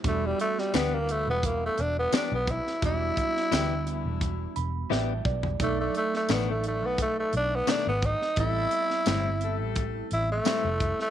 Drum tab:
HH |x-x-x-x-x-x-x-x-|x-x-x-x-x-x-----|x-x-x-x-x-x-x-x-|x-x-x-x-x-x-x-x-|
TB |----x-------x---|----x-----------|----x-------x---|----x-------x---|
SD |---oo-------o--o|---oo-------o---|---oo-------o--o|---oo-------o--o|
FT |----------------|---------------o|----------------|----------------|
BD |o-------o-----o-|o-o-----o-----o-|o-------o-----o-|o-------o-----o-|